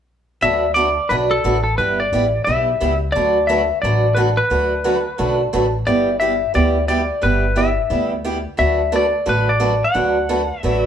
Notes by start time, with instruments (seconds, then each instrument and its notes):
0.41 upright bass D2, steel-string acoustic guitar D3 F#3 A3 D4 F#4 B4, electric slide guitar E5
0.74 steel-string acoustic guitar D3 F#3 A3 D4 F#4 B4, electric slide guitar D5
1.09 upright bass B1, steel-string acoustic guitar D3 F#3 A3 D4 F#4 B4, electric slide guitar B4
1.31 electric slide guitar A4
1.44 upright bass A1, steel-string acoustic guitar D3 F#3 A3 D4 F#4 B4
1.64 electric slide guitar A4
1.78 upright bass G1, steel-string acoustic guitar G3 B3 E4 G4, electric slide guitar B4
2.00 electric slide guitar D5
2.12 upright bass A1, steel-string acoustic guitar G3 B3 E4 G4
2.44 upright bass B1, steel-string acoustic guitar G3 B3 E4 G4, electric slide guitar E5
2.80 upright bass C#2, steel-string acoustic guitar G3 B3 E4 G4
3.12 upright bass D2, steel-string acoustic guitar D3 F#3 A3 D4 F#4 B4, electric slide guitar D5
3.47 steel-string acoustic guitar D3 F#3 A3 D4 F#4 B4, electric slide guitar E5
3.82 upright bass A1, steel-string acoustic guitar D3 F#3 A3 D4 F#4 B4, electric slide guitar D5
4.15 steel-string acoustic guitar D3 F#3 A3 D4 F#4 B4, electric slide guitar B4
4.37 electric slide guitar B4
4.50 upright bass D2, steel-string acoustic guitar D3 F#3 A3 D4 F#4 B4
4.84 steel-string acoustic guitar D3 F#3 A3 D4 F#4 B4
5.18 upright bass B1, steel-string acoustic guitar D3 F#3 A3 D4 F#4 B4
5.53 upright bass A1, steel-string acoustic guitar D3 F#3 A3 D4 F#4 B4
5.86 upright bass G1, steel-string acoustic guitar G3 B3 E4 G4, electric slide guitar D5
6.20 steel-string acoustic guitar G3 B3 E4 G4, electric slide guitar E5
6.54 upright bass D2, steel-string acoustic guitar G3 B3 E4 G4, electric slide guitar D5
6.88 steel-string acoustic guitar G3 B3 E4 G4, electric slide guitar D5
7.21 upright bass G1, steel-string acoustic guitar G3 B3 E4 G4, electric slide guitar B4
7.56 steel-string acoustic guitar G3 B3 E4 G4, electric slide guitar E5
7.90 upright bass D2, steel-string acoustic guitar G3 B3 E4 G4
8.24 steel-string acoustic guitar G3 B3 E4 G4
8.57 upright bass D2, steel-string acoustic guitar D3 F#3 A3 D4 F#4 B4, electric slide guitar E5
8.92 steel-string acoustic guitar D3 F#3 A3 D4 F#4 B4, electric slide guitar D5
9.26 upright bass A1, steel-string acoustic guitar D3 F#3 A3 D4 F#4 B4, electric slide guitar B4
9.49 electric slide guitar D5
9.60 steel-string acoustic guitar D3 F#3 A3 D4 F#4 B4
9.84 electric slide guitar F#5
9.94 upright bass D2, steel-string acoustic guitar D3 F#3 A3 D4 F#4 B4
10.29 steel-string acoustic guitar D3 F#3 A3 D4 F#4 B4
10.59 steel-string acoustic guitar D3, electric slide guitar E5
10.64 upright bass A1, steel-string acoustic guitar F#3 A3 D4 F#4 B4